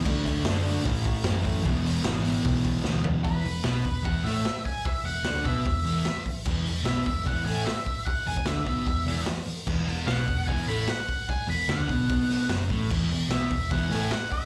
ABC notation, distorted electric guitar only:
X:1
M:4/4
L:1/8
Q:1/4=149
K:Emix
V:1 name="Distorted electric guitar" clef=bass
[D,A,D] [A,D] [D,A,D] [A,D] [A,,E,A,]2 [A,,E,A,] [E,A,] | [E,,B,,E,] [B,,E,] [E,,B,,E,] [B,,E,]3 [E,,B,,E,] [B,,E,] | [E,,E,] E,, [B,,B,] E,, [E,,E,] [A,,A,] z2 | z E,, [D,D] [B,,B,] E,, [E,,E,] z2 |
[E,,E,] E,, [B,,B,] E,, [E,,E,] [A,,A,] z2 | z E,, [D,D] [B,,B,] E,, [E,,E,] z2 | [E,,E,] E,, [B,,B,] E,, [E,,E,] [A,,A,] z2 | z E,, [D,D] [B,,B,] [B,,B,]2 [F,,F,] [A,,A,] |
[E,,E,] E,, [B,,B,] E,, [E,,E,] [A,,A,] z2 |]